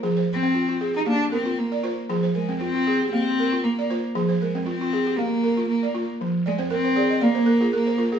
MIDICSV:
0, 0, Header, 1, 3, 480
1, 0, Start_track
1, 0, Tempo, 513699
1, 31, Time_signature, 4, 2, 24, 8
1, 7654, End_track
2, 0, Start_track
2, 0, Title_t, "Balafon"
2, 0, Program_c, 0, 12
2, 0, Note_on_c, 0, 72, 62
2, 30, Note_on_c, 0, 68, 67
2, 31, Note_on_c, 0, 53, 75
2, 145, Note_off_c, 0, 72, 0
2, 156, Note_on_c, 0, 72, 60
2, 272, Note_off_c, 0, 53, 0
2, 400, Note_off_c, 0, 68, 0
2, 402, Note_on_c, 0, 60, 69
2, 510, Note_off_c, 0, 72, 0
2, 510, Note_on_c, 0, 65, 65
2, 630, Note_off_c, 0, 65, 0
2, 642, Note_off_c, 0, 60, 0
2, 642, Note_on_c, 0, 65, 58
2, 756, Note_on_c, 0, 68, 69
2, 881, Note_on_c, 0, 67, 60
2, 993, Note_off_c, 0, 65, 0
2, 994, Note_on_c, 0, 58, 70
2, 995, Note_off_c, 0, 68, 0
2, 1122, Note_off_c, 0, 67, 0
2, 1234, Note_off_c, 0, 58, 0
2, 1234, Note_on_c, 0, 70, 63
2, 1360, Note_on_c, 0, 65, 69
2, 1601, Note_off_c, 0, 65, 0
2, 1603, Note_off_c, 0, 70, 0
2, 1605, Note_on_c, 0, 74, 58
2, 1715, Note_on_c, 0, 65, 69
2, 1717, Note_on_c, 0, 72, 58
2, 1954, Note_off_c, 0, 65, 0
2, 1955, Note_off_c, 0, 74, 0
2, 1958, Note_on_c, 0, 53, 77
2, 1959, Note_on_c, 0, 68, 66
2, 2073, Note_off_c, 0, 72, 0
2, 2084, Note_on_c, 0, 72, 58
2, 2194, Note_on_c, 0, 70, 49
2, 2196, Note_off_c, 0, 53, 0
2, 2324, Note_on_c, 0, 60, 69
2, 2325, Note_off_c, 0, 68, 0
2, 2434, Note_off_c, 0, 72, 0
2, 2437, Note_on_c, 0, 65, 64
2, 2558, Note_off_c, 0, 65, 0
2, 2563, Note_off_c, 0, 70, 0
2, 2564, Note_off_c, 0, 60, 0
2, 2569, Note_on_c, 0, 65, 61
2, 2683, Note_on_c, 0, 68, 69
2, 2818, Note_on_c, 0, 67, 58
2, 2917, Note_off_c, 0, 65, 0
2, 2918, Note_off_c, 0, 68, 0
2, 2922, Note_on_c, 0, 58, 69
2, 3051, Note_off_c, 0, 67, 0
2, 3158, Note_off_c, 0, 58, 0
2, 3173, Note_on_c, 0, 70, 65
2, 3292, Note_on_c, 0, 65, 62
2, 3527, Note_off_c, 0, 65, 0
2, 3532, Note_off_c, 0, 70, 0
2, 3538, Note_on_c, 0, 74, 54
2, 3646, Note_on_c, 0, 72, 58
2, 3648, Note_on_c, 0, 65, 66
2, 3880, Note_off_c, 0, 65, 0
2, 3880, Note_on_c, 0, 68, 66
2, 3881, Note_off_c, 0, 74, 0
2, 3881, Note_on_c, 0, 53, 77
2, 3996, Note_off_c, 0, 72, 0
2, 4008, Note_on_c, 0, 72, 58
2, 4117, Note_off_c, 0, 53, 0
2, 4127, Note_on_c, 0, 70, 55
2, 4245, Note_off_c, 0, 68, 0
2, 4252, Note_on_c, 0, 60, 70
2, 4356, Note_off_c, 0, 72, 0
2, 4357, Note_on_c, 0, 65, 61
2, 4485, Note_off_c, 0, 65, 0
2, 4487, Note_off_c, 0, 60, 0
2, 4489, Note_off_c, 0, 70, 0
2, 4497, Note_on_c, 0, 65, 63
2, 4608, Note_on_c, 0, 68, 68
2, 4735, Note_on_c, 0, 67, 57
2, 4840, Note_off_c, 0, 65, 0
2, 4840, Note_off_c, 0, 68, 0
2, 4846, Note_on_c, 0, 58, 70
2, 4968, Note_off_c, 0, 67, 0
2, 5078, Note_on_c, 0, 70, 62
2, 5079, Note_off_c, 0, 58, 0
2, 5207, Note_on_c, 0, 65, 61
2, 5444, Note_off_c, 0, 65, 0
2, 5444, Note_off_c, 0, 70, 0
2, 5446, Note_on_c, 0, 74, 51
2, 5557, Note_on_c, 0, 65, 74
2, 5794, Note_off_c, 0, 65, 0
2, 5794, Note_off_c, 0, 74, 0
2, 5803, Note_on_c, 0, 53, 75
2, 6035, Note_on_c, 0, 74, 56
2, 6037, Note_off_c, 0, 53, 0
2, 6152, Note_on_c, 0, 72, 63
2, 6154, Note_on_c, 0, 60, 71
2, 6256, Note_off_c, 0, 74, 0
2, 6265, Note_on_c, 0, 70, 67
2, 6379, Note_off_c, 0, 72, 0
2, 6397, Note_off_c, 0, 60, 0
2, 6397, Note_on_c, 0, 72, 66
2, 6491, Note_off_c, 0, 70, 0
2, 6505, Note_on_c, 0, 68, 69
2, 6506, Note_on_c, 0, 74, 61
2, 6622, Note_off_c, 0, 72, 0
2, 6629, Note_on_c, 0, 75, 58
2, 6727, Note_off_c, 0, 74, 0
2, 6739, Note_on_c, 0, 74, 62
2, 6740, Note_on_c, 0, 58, 76
2, 6748, Note_off_c, 0, 68, 0
2, 6858, Note_off_c, 0, 75, 0
2, 6867, Note_on_c, 0, 72, 61
2, 6968, Note_off_c, 0, 74, 0
2, 6972, Note_on_c, 0, 70, 71
2, 6985, Note_off_c, 0, 58, 0
2, 7096, Note_off_c, 0, 72, 0
2, 7107, Note_on_c, 0, 68, 61
2, 7109, Note_on_c, 0, 65, 65
2, 7204, Note_off_c, 0, 70, 0
2, 7223, Note_on_c, 0, 70, 64
2, 7337, Note_off_c, 0, 68, 0
2, 7350, Note_on_c, 0, 72, 62
2, 7355, Note_off_c, 0, 65, 0
2, 7450, Note_off_c, 0, 70, 0
2, 7458, Note_on_c, 0, 65, 71
2, 7460, Note_on_c, 0, 70, 60
2, 7578, Note_off_c, 0, 72, 0
2, 7589, Note_on_c, 0, 68, 64
2, 7654, Note_off_c, 0, 65, 0
2, 7654, Note_off_c, 0, 68, 0
2, 7654, Note_off_c, 0, 70, 0
2, 7654, End_track
3, 0, Start_track
3, 0, Title_t, "Cello"
3, 0, Program_c, 1, 42
3, 306, Note_on_c, 1, 60, 82
3, 862, Note_off_c, 1, 60, 0
3, 900, Note_on_c, 1, 63, 73
3, 946, Note_off_c, 1, 63, 0
3, 1004, Note_on_c, 1, 62, 93
3, 1222, Note_off_c, 1, 62, 0
3, 1239, Note_on_c, 1, 60, 78
3, 1481, Note_on_c, 1, 58, 71
3, 1496, Note_off_c, 1, 60, 0
3, 1847, Note_off_c, 1, 58, 0
3, 2195, Note_on_c, 1, 56, 74
3, 2418, Note_off_c, 1, 56, 0
3, 2435, Note_on_c, 1, 60, 91
3, 2881, Note_off_c, 1, 60, 0
3, 2918, Note_on_c, 1, 60, 101
3, 3402, Note_on_c, 1, 58, 75
3, 3416, Note_off_c, 1, 60, 0
3, 3767, Note_off_c, 1, 58, 0
3, 4120, Note_on_c, 1, 56, 67
3, 4340, Note_off_c, 1, 56, 0
3, 4364, Note_on_c, 1, 60, 85
3, 4832, Note_on_c, 1, 58, 85
3, 4846, Note_off_c, 1, 60, 0
3, 5312, Note_off_c, 1, 58, 0
3, 5319, Note_on_c, 1, 58, 68
3, 5659, Note_off_c, 1, 58, 0
3, 6047, Note_on_c, 1, 56, 80
3, 6151, Note_off_c, 1, 56, 0
3, 6283, Note_on_c, 1, 60, 94
3, 6759, Note_on_c, 1, 58, 91
3, 6773, Note_off_c, 1, 60, 0
3, 7235, Note_off_c, 1, 58, 0
3, 7246, Note_on_c, 1, 58, 76
3, 7583, Note_off_c, 1, 58, 0
3, 7654, End_track
0, 0, End_of_file